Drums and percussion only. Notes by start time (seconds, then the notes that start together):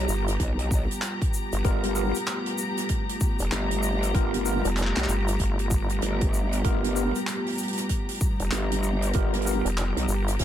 0.09 shaker
0.28 cross-stick, closed hi-hat, shaker
0.40 kick, closed hi-hat, shaker
0.59 closed hi-hat
0.71 kick, shaker
0.91 closed hi-hat, shaker
1.02 clap, closed hi-hat, shaker
1.22 kick, closed hi-hat
1.34 shaker
1.53 closed hi-hat, shaker
1.65 kick, closed hi-hat, shaker
1.83 cross-stick, closed hi-hat
1.95 shaker
2.15 closed hi-hat, shaker
2.26 clap, closed hi-hat, shaker
2.46 cross-stick, closed hi-hat
2.58 shaker
2.77 cross-stick, closed hi-hat, shaker
2.89 kick, closed hi-hat, shaker
3.09 closed hi-hat
3.20 kick, shaker
3.39 closed hi-hat, shaker
3.52 clap, closed hi-hat, shaker
3.71 closed hi-hat
3.83 shaker
4.03 closed hi-hat, shaker
4.14 kick, closed hi-hat, shaker
4.33 cross-stick, closed hi-hat
4.46 shaker
4.65 closed hi-hat, shaker
4.77 clap, closed hi-hat, shaker
4.83 clap
4.87 clap
4.96 cross-stick, clap, closed hi-hat
5.04 clap
5.09 shaker
5.28 closed hi-hat, shaker
5.39 kick, closed hi-hat, shaker
5.59 closed hi-hat
5.71 kick, shaker
5.89 closed hi-hat, shaker
6.02 closed hi-hat, shaker
6.21 kick, closed hi-hat
6.34 shaker
6.53 closed hi-hat, shaker
6.64 kick, closed hi-hat, shaker
6.84 cross-stick, closed hi-hat
6.96 shaker
7.15 closed hi-hat, shaker
7.27 clap, closed hi-hat, shaker
7.46 cross-stick, closed hi-hat
7.49 closed hi-hat
7.52 closed hi-hat
7.55 closed hi-hat
7.58 closed hi-hat, shaker
7.63 closed hi-hat
7.68 closed hi-hat
7.73 closed hi-hat
7.78 cross-stick, closed hi-hat, shaker
7.89 kick, closed hi-hat, shaker
8.09 closed hi-hat
8.11 closed hi-hat
8.14 closed hi-hat
8.17 kick, closed hi-hat, shaker
8.39 closed hi-hat, shaker
8.51 clap, closed hi-hat, shaker
8.72 closed hi-hat
8.83 shaker
9.02 closed hi-hat, shaker
9.13 kick, closed hi-hat, shaker
9.33 cross-stick, closed hi-hat
9.42 closed hi-hat
9.47 shaker
9.52 closed hi-hat
9.66 closed hi-hat, shaker
9.77 clap, closed hi-hat, shaker
9.97 cross-stick, closed hi-hat
10.08 shaker
10.28 cross-stick, closed hi-hat, shaker
10.39 kick, snare, closed hi-hat, shaker